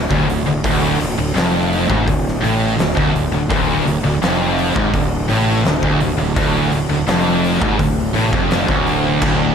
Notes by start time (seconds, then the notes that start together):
Already playing: D3 A3 D4
0.10 D1 D2, kick
0.28 D1 D2, open hi-hat
0.46 D1 D2
0.64 D1 D2, kick, open hi-hat
1.00 D1 D2, snare, open hi-hat
1.18 D1 D2
1.36 F1 F2, snare, open hi-hat
1.73 open hi-hat
1.90 G#1 G#2, kick
2.07 D1 D2, kick, open hi-hat
2.28 snare
2.43 A1 A2, open hi-hat
2.79 D1 D2, snare, open hi-hat
2.97 D1 D2, kick
3.13 D1 D2, open hi-hat
3.31 D1 D2
3.50 D1 D2, kick, open hi-hat
3.85 D1 D2, open hi-hat
4.03 D1 D2
4.21 F1 F2, snare, open hi-hat
4.58 open hi-hat
4.76 G#1 G#2, kick
4.94 D1 D2, kick, open hi-hat
5.29 A1 A2, open hi-hat
5.64 D1 D2, snare, open hi-hat
5.81 D1 D2, kick
5.99 D1 D2, open hi-hat
6.17 D1 D2
6.35 D1 D2, kick, open hi-hat
6.72 D1 D2, open hi-hat
6.89 D1 D2
7.07 F1 F2, snare, open hi-hat
7.44 open hi-hat
7.61 G#1 G#2, kick
7.79 D1 D2, kick, open hi-hat
8.13 A1 A2, open hi-hat
8.32 F1 F2, kick
8.51 snare, open hi-hat
8.68 D1 D2, kick
8.86 open hi-hat
9.22 D1 D2, kick, crash